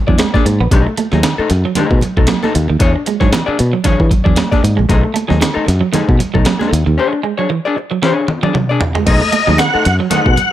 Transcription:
0.07 E2 F#3 D4 G#4 D5, kick
0.18 G#3, muted hollow-body jazz guitar stroke, snare, closed hi-hat, high conga
0.34 D4 G#4 D5, kick, snare, high conga
0.46 G#2, muted hollow-body jazz guitar stroke, muted clean electric guitar stroke, closed hi-hat
0.60 A#1 B3, muted hollow-body jazz guitar stroke
0.71 B1 A3 D#4 G#4, kick, closed hi-hat, muted conga
0.87 muted clean electric guitar stroke, muted hollow-body jazz guitar stroke
0.97 A3, muted hollow-body jazz guitar stroke, closed hi-hat, muted conga
1.12 D#2 F#3 A3 D#4 G#4, snare
1.23 D#3, muted hollow-body jazz guitar stroke, snare, closed hi-hat, high conga
1.38 A3 D#4 A4, muted fingered electric bass stroke
1.50 F#2, muted clean electric guitar stroke, muted hollow-body jazz guitar stroke, snare, closed hi-hat
1.65 F#3, muted hollow-body jazz guitar stroke
1.75 D#3 A3 D#4 G#4, muted fingered electric bass stroke, snare, closed hi-hat, muted conga, low conga
1.91 B2, kick
2.01 muted hollow-body jazz guitar stroke, muted clean electric guitar stroke, closed hi-hat, low conga
2.17 B1 F#3 A3 D#4 A4, kick
2.27 F#3, muted hollow-body jazz guitar stroke, snare, closed hi-hat, high conga
2.43 A3 D#4 A4, snare, high conga
2.54 D#2, muted hollow-body jazz guitar stroke, muted clean electric guitar stroke, closed hi-hat
2.68 D#2 D#3, muted hollow-body jazz guitar stroke
2.79 E2 D4 G#4 C#5, kick, closed hi-hat, muted conga
2.94 muted hollow-body jazz guitar stroke, muted clean electric guitar stroke
3.06 G#3, muted hollow-body jazz guitar stroke, closed hi-hat, muted conga
3.20 G#2 F#3 D4 G#4 C#5, kick, snare
3.31 E3, muted hollow-body jazz guitar stroke, snare, closed hi-hat, high conga
3.46 D4 G#4 D5, muted fingered electric bass stroke
3.59 B2, muted clean electric guitar stroke, muted hollow-body jazz guitar stroke, closed hi-hat
3.73 F#3, muted hollow-body jazz guitar stroke
3.84 E3 D4 G#4 C#5, muted fingered electric bass stroke, kick, snare, closed hi-hat, muted conga, low conga
4.00 E3, kick
4.10 muted hollow-body jazz guitar stroke, muted clean electric guitar stroke, kick, closed hi-hat, muted conga, low conga
4.24 E2 F#3 D4 G#4 D5, kick
4.36 F#3, muted hollow-body jazz guitar stroke, snare, closed hi-hat, high conga
4.51 D4 G#4 D5, kick, snare, high conga
4.63 G#2, muted hollow-body jazz guitar stroke, muted clean electric guitar stroke, closed hi-hat
4.77 A#1 G#3, muted hollow-body jazz guitar stroke
4.89 B1 A3 D#4 G#4, kick, closed hi-hat, muted conga
5.03 muted clean electric guitar stroke, muted hollow-body jazz guitar stroke
5.14 A3, muted hollow-body jazz guitar stroke, closed hi-hat, muted conga
5.28 D#2 F#3 A3 D#4 G#4, snare
5.40 D#3, muted hollow-body jazz guitar stroke, snare, closed hi-hat, high conga
5.54 A3 D#4 A4, muted fingered electric bass stroke
5.66 F#2, muted hollow-body jazz guitar stroke, muted clean electric guitar stroke, snare, closed hi-hat
5.81 F#3, muted hollow-body jazz guitar stroke
5.92 D#3 A3 D#4 G#4, muted fingered electric bass stroke, snare, closed hi-hat, muted conga, low conga
6.09 B2, kick
6.19 muted hollow-body jazz guitar stroke, muted clean electric guitar stroke, closed hi-hat, low conga
6.34 B1 F#3 A3 D#4 A4, kick
6.45 F#3, muted hollow-body jazz guitar stroke, snare, closed hi-hat, high conga
6.59 A3 D#4 A4, snare, high conga
6.71 D#2, muted clean electric guitar stroke, muted hollow-body jazz guitar stroke, closed hi-hat
6.86 D#2 D#3, muted hollow-body jazz guitar stroke
6.98 D4 G#4 C#5
7.12 muted hollow-body jazz guitar stroke, muted clean electric guitar stroke
7.23 G#3, muted hollow-body jazz guitar stroke
7.38 F#3 D4 G#4 C#5
7.50 E3, muted hollow-body jazz guitar stroke
7.65 D4 G#4 D5
7.76 muted clean electric guitar stroke, muted hollow-body jazz guitar stroke
7.91 F#3, muted hollow-body jazz guitar stroke
8.02 E3 D4 G#4 C#5, snare
8.28 muted clean electric guitar stroke, muted hollow-body jazz guitar stroke, high tom
8.43 F#3 D4 G#4 D5, high tom
8.54 F#3, muted hollow-body jazz guitar stroke, mid tom
8.69 D4 G#4 D5
8.80 muted clean electric guitar stroke, muted hollow-body jazz guitar stroke, floor tom
8.95 G#3, muted hollow-body jazz guitar stroke, floor tom
9.06 B1 A3 D#4 G#4 D#5, kick, closed hi-hat, crash, muted conga
9.21 muted clean electric guitar stroke, muted hollow-body jazz guitar stroke
9.32 A3, muted hollow-body jazz guitar stroke, closed hi-hat, muted conga
9.47 D#2 F#3 A3 D#4 G#4, snare
9.58 D#3 F#5, muted hollow-body jazz guitar stroke, snare, closed hi-hat, high conga
9.74 A3 D#4 A4, muted fingered electric bass stroke
9.85 F#2 F#5, muted clean electric guitar stroke, muted hollow-body jazz guitar stroke, snare, closed hi-hat
10.00 F#3, muted hollow-body jazz guitar stroke
10.10 D#3 A3 D#4 G#4 F#5, muted fingered electric bass stroke, snare, closed hi-hat, muted conga, low conga
10.26 B2, kick
10.37 muted clean electric guitar stroke, closed hi-hat, muted conga, low conga

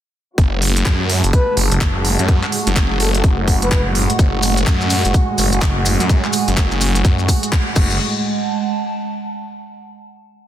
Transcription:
0.38 F#1 A2 G#3 F#4, kick, closed hi-hat
0.56 A5
0.62 open hi-hat
0.76 F#5, closed hi-hat
0.86 F#2, kick, clap, closed hi-hat
1.09 open hi-hat
1.24 F#1, closed hi-hat
1.33 B4, kick, closed hi-hat
1.57 F#1, open hi-hat
1.72 F#1, closed hi-hat
1.81 kick, clap, closed hi-hat
2.05 open hi-hat
2.19 F#2, closed hi-hat
2.28 kick, closed hi-hat
2.43 clap
2.52 open hi-hat
2.67 F#1, closed hi-hat
2.76 kick, clap, closed hi-hat
2.91 F#1
3.00 A4, open hi-hat
3.15 A4, closed hi-hat
3.24 F#1, kick, closed hi-hat
3.48 kick, open hi-hat
3.62 F#1 B4, closed hi-hat
3.71 B4, kick, clap, closed hi-hat
3.95 open hi-hat
4.10 closed hi-hat
4.19 F#1 G#3 G#5, kick, closed hi-hat, maracas
4.43 open hi-hat, maracas
4.57 closed hi-hat, maracas
4.67 F#2, kick, clap, closed hi-hat, maracas
4.81 maracas
4.90 open hi-hat, maracas
5.05 F#1, closed hi-hat, maracas
5.14 kick, closed hi-hat, maracas
5.38 F#1, open hi-hat, maracas
5.52 F#1, closed hi-hat, maracas
5.61 kick, clap, closed hi-hat, maracas
5.86 open hi-hat, maracas
6.00 F#2, closed hi-hat, maracas
6.09 kick, closed hi-hat, maracas
6.25 clap
6.33 open hi-hat, maracas
6.48 F#1, closed hi-hat, maracas
6.57 kick, clap, closed hi-hat, maracas
6.71 F#1, maracas
6.81 open hi-hat, maracas
6.95 closed hi-hat, maracas
7.04 F#2, kick, closed hi-hat, maracas
7.19 maracas
7.28 kick, open hi-hat, maracas
7.43 closed hi-hat, maracas
7.52 kick, clap, closed hi-hat, maracas
7.76 F#1 A2 G#3 F#4, kick, crash, maracas
7.85 F#5
7.91 maracas
8.16 A5

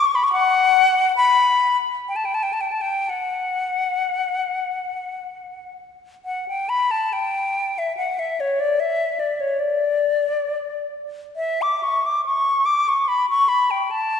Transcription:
0.06 C#6
0.15 B5
0.24 C#6
0.32 F#5
1.17 B5
2.09 G5
2.16 A5
2.25 G5
2.34 A5
2.43 G5
2.53 A5
2.61 G5
2.72 A5
2.81 G5
3.09 F#5
6.25 F#5
6.48 G5
6.69 B5
6.91 A5
7.13 G5
7.78 E5
7.97 F#5
8.19 E5
8.40 C#5
8.60 D5
8.80 E5
9.19 D5
9.40 C#5
9.59 D5
11.36 E5
11.62 D6
11.83 C#6
12.06 D6
12.26 C#6
12.66 D6
12.88 C#6
13.08 B5
13.30 C#6
13.48 B5
13.71 G5
13.91 A5

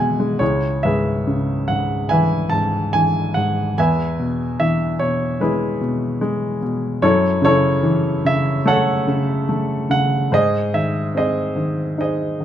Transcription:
Already playing: E2 B2 E3 G#3 E5 F#5 G#5
0.20 G#3
0.39 C#2 E4 G#4 C#5
0.83 G#2 G#4 B4 E5
1.27 C#3
1.68 G#2 F#5
2.09 E3 B4 E5 G#5
2.50 G#2 A5
2.93 E3 G#5
3.34 G#2 F#5
3.78 E2 B4 E5 G#5
4.19 B2
4.60 E3 E5
4.99 B2 C#5
5.41 G#3 E4 G#4 B4
5.81 B2
6.21 G#3
6.62 B2
7.02 F#2 E4 A4 C#5
7.42 C#3 E4 A4 C#5
7.83 E3
8.25 C#3 E5
8.66 A3 A4 C#5 F#5
9.07 C#3
9.49 A3
9.90 C#3 F#5
10.32 G#2 G#4 C5 D#5
10.74 D#3 E5
11.14 C4 G#4 C5 D#5
11.56 D#3
11.98 D#4 G#4 C5 D#5
12.40 D#3

